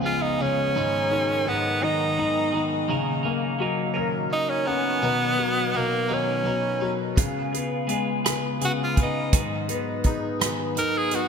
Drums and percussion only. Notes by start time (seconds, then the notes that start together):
7.17 kick, closed hi-hat
7.54 closed hi-hat
7.89 closed hi-hat
8.26 cross-stick, closed hi-hat
8.61 closed hi-hat
8.97 kick, closed hi-hat
9.33 kick, closed hi-hat
9.69 closed hi-hat
10.04 kick, closed hi-hat
10.41 cross-stick, closed hi-hat
10.77 closed hi-hat
11.11 closed hi-hat